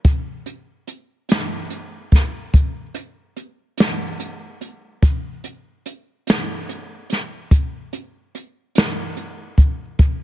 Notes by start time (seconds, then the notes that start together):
0.05 kick, closed hi-hat
0.46 closed hi-hat
0.87 closed hi-hat
1.29 snare, closed hi-hat
1.70 closed hi-hat
2.12 kick, snare, closed hi-hat
2.53 kick, closed hi-hat
2.94 closed hi-hat
3.36 closed hi-hat
3.77 snare, closed hi-hat
4.19 closed hi-hat
4.61 closed hi-hat
5.02 kick, closed hi-hat
5.44 closed hi-hat
5.86 closed hi-hat
6.27 snare, closed hi-hat
6.69 closed hi-hat
7.10 snare, closed hi-hat
7.51 kick, closed hi-hat
7.93 closed hi-hat
8.35 closed hi-hat
8.75 snare, closed hi-hat
9.16 closed hi-hat
9.58 kick, closed hi-hat
9.99 kick, closed hi-hat